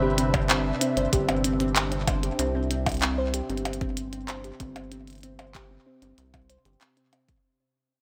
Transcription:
Already playing: analog synth bass G1, analog synth pad C3 C4 D4 B4 E5
0.02 synth pluck G4
0.18 synth pluck C4, closed hi-hat
0.34 synth pluck C4, kick, closed hi-hat, percussion blips
0.50 synth pluck C4, clap, closed hi-hat
0.81 synth pluck C4, closed hi-hat
0.97 analog synth bass G1, synth pluck C5, closed hi-hat
1.13 analog synth bass G1, synth pluck G4, kick, closed hi-hat
1.29 synth pluck C4, closed hi-hat, percussion blips
1.44 synth pluck C4, closed hi-hat
1.60 synth pluck C4, closed hi-hat
1.76 clap, closed hi-hat
1.92 synth pluck C4, closed hi-hat
2.08 synth pluck C5, kick, closed hi-hat, percussion blips
2.23 synth pluck G4, closed hi-hat
2.39 analog synth bass C2, synth pluck C4, closed hi-hat
2.55 synth pluck C4
2.71 synth pluck C4, analog synth pad C5, closed hi-hat
2.86 kick, closed hi-hat, percussion blips
2.89 closed hi-hat
2.92 closed hi-hat
2.94 closed hi-hat
2.97 closed hi-hat
3.00 clap, closed hi-hat
3.02 synth pluck C4, closed hi-hat
3.18 synth pluck C5
3.34 synth pluck G4, closed hi-hat
3.50 analog synth bass G1, synth pluck C4, closed hi-hat
3.57 closed hi-hat
3.65 synth pluck C4, closed hi-hat, percussion blips
3.73 closed hi-hat
3.81 synth pluck C4, kick, closed hi-hat
3.97 closed hi-hat
4.13 synth pluck C4, closed hi-hat
4.29 synth pluck C5, clap, closed hi-hat
4.44 synth pluck G4, closed hi-hat
4.60 analog synth bass G1, synth pluck C4, kick, closed hi-hat
4.76 synth pluck C4, closed hi-hat, percussion blips
4.92 synth pluck C4, closed hi-hat
5.07 closed hi-hat
5.10 closed hi-hat
5.13 closed hi-hat
5.15 closed hi-hat
5.18 closed hi-hat
5.21 closed hi-hat
5.23 synth pluck C4, closed hi-hat
5.39 synth pluck C5, closed hi-hat, percussion blips
5.55 synth pluck G4, kick, clap, closed hi-hat
5.71 synth pluck C4
5.86 synth pluck C4
6.02 analog synth bass G1, synth pluck C4, closed hi-hat
6.18 analog synth bass C2, closed hi-hat
6.34 synth pluck C4, kick, closed hi-hat, percussion blips
6.50 synth pluck C5, closed hi-hat
6.65 analog synth bass G1, synth pluck G4, closed hi-hat
6.81 synth pluck C4, clap, closed hi-hat
6.97 synth pluck C4, closed hi-hat
7.13 synth pluck C4, closed hi-hat, percussion blips
7.29 kick, closed hi-hat

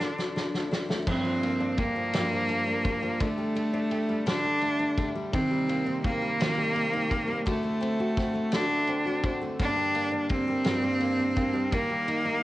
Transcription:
Already playing: nylon-string guitar D4, cello D4
0.01 nylon-string guitar D3, snare
0.19 nylon-string guitar F#3, snare
0.36 nylon-string guitar D4, snare
0.54 nylon-string guitar A3, snare
0.72 nylon-string guitar D4, snare
0.89 nylon-string guitar A3, snare
1.07 nylon-string guitar G2 D4, steel-string acoustic guitar F3, cello C4, kick, crash
1.25 nylon-string guitar F3, steel-string acoustic guitar A#3
1.43 nylon-string guitar A#3, steel-string acoustic guitar D4, ride
1.60 steel-string acoustic guitar A#3, nylon-string guitar D4
1.77 nylon-string guitar A#3, cello A#3, steel-string acoustic guitar G4, kick, ride
1.96 nylon-string guitar F3, steel-string acoustic guitar A#3
2.13 nylon-string guitar G2 D4, steel-string acoustic guitar F3, snare, ride
2.32 nylon-string guitar F3, steel-string acoustic guitar A#3
2.49 nylon-string guitar A#3, steel-string acoustic guitar D4, ride
2.67 steel-string acoustic guitar A#3, nylon-string guitar D4
2.85 nylon-string guitar A#3, steel-string acoustic guitar G4, kick, ride
3.02 nylon-string guitar F3, steel-string acoustic guitar A#3
3.20 nylon-string guitar D3 D4, steel-string acoustic guitar A3, cello A3, kick, ride
3.37 nylon-string guitar G3, steel-string acoustic guitar A3
3.55 nylon-string guitar A3, steel-string acoustic guitar D4, ride
3.73 steel-string acoustic guitar A3, nylon-string guitar D4
3.90 nylon-string guitar A3, steel-string acoustic guitar G4, ride
4.09 nylon-string guitar G3, steel-string acoustic guitar A3
4.26 nylon-string guitar D3 D4, steel-string acoustic guitar A3, cello D4, snare, ride
4.44 nylon-string guitar G3, steel-string acoustic guitar A3
4.61 nylon-string guitar A3, steel-string acoustic guitar D4, ride
4.79 steel-string acoustic guitar A3, nylon-string guitar D4
4.98 nylon-string guitar A3, steel-string acoustic guitar G4, kick, ride
5.15 nylon-string guitar G3, steel-string acoustic guitar A3
5.33 nylon-string guitar C3 D#4, steel-string acoustic guitar D#3, cello C4, kick, ride
5.51 nylon-string guitar G3, steel-string acoustic guitar A#3
5.69 nylon-string guitar A#3, steel-string acoustic guitar C4, ride
5.86 steel-string acoustic guitar A#3, nylon-string guitar D#4
6.04 cello A#3, nylon-string guitar A#3, steel-string acoustic guitar G4, kick, ride
6.22 nylon-string guitar G3, steel-string acoustic guitar A#3
6.40 nylon-string guitar C3 D#4, steel-string acoustic guitar D#3, snare, ride
6.57 nylon-string guitar G3, steel-string acoustic guitar A#3
6.75 nylon-string guitar A#3, steel-string acoustic guitar C4, ride
6.93 steel-string acoustic guitar A#3, nylon-string guitar D#4
7.10 nylon-string guitar A#3, steel-string acoustic guitar G4, kick, ride
7.28 nylon-string guitar G3, steel-string acoustic guitar A#3
7.46 nylon-string guitar D3 F#4, steel-string acoustic guitar A3, cello A3, kick, ride
7.63 nylon-string guitar A3, steel-string acoustic guitar A3
7.81 nylon-string guitar C4, steel-string acoustic guitar C4, ride
7.99 steel-string acoustic guitar A3, nylon-string guitar F#4
8.17 nylon-string guitar C4, steel-string acoustic guitar F#4, kick, snare, ride
8.34 nylon-string guitar A3, steel-string acoustic guitar A3
8.52 nylon-string guitar D3 F#4, steel-string acoustic guitar A3, cello D4, snare, ride
8.69 nylon-string guitar A3, steel-string acoustic guitar A3
8.87 nylon-string guitar C4, steel-string acoustic guitar C4, ride
9.05 steel-string acoustic guitar A3, nylon-string guitar F#4
9.23 nylon-string guitar C4, steel-string acoustic guitar F#4, kick, ride
9.41 nylon-string guitar A3, steel-string acoustic guitar A3
9.59 nylon-string guitar G2 D4, steel-string acoustic guitar A#3, cello D4, kick, ride
9.77 nylon-string guitar G3, steel-string acoustic guitar A#3
9.95 nylon-string guitar A#3, steel-string acoustic guitar D4, ride
10.12 steel-string acoustic guitar A#3, nylon-string guitar D4
10.29 nylon-string guitar A#3, cello C4, steel-string acoustic guitar G4, kick, ride
10.48 nylon-string guitar G3, steel-string acoustic guitar A#3
10.64 nylon-string guitar G2 D4, steel-string acoustic guitar A#3, snare, ride
10.83 nylon-string guitar G3, steel-string acoustic guitar A#3
11.00 nylon-string guitar A#3, steel-string acoustic guitar D4, ride
11.19 steel-string acoustic guitar A#3, nylon-string guitar D4
11.36 nylon-string guitar A#3, steel-string acoustic guitar G4, kick, ride
11.53 nylon-string guitar G3, steel-string acoustic guitar A#3
11.72 nylon-string guitar D#3 D#4, cello A#3, steel-string acoustic guitar A#3, kick, ride
11.90 nylon-string guitar G3, steel-string acoustic guitar A#3
12.08 nylon-string guitar A#3, steel-string acoustic guitar D#4, ride
12.25 steel-string acoustic guitar A#3, nylon-string guitar D#4

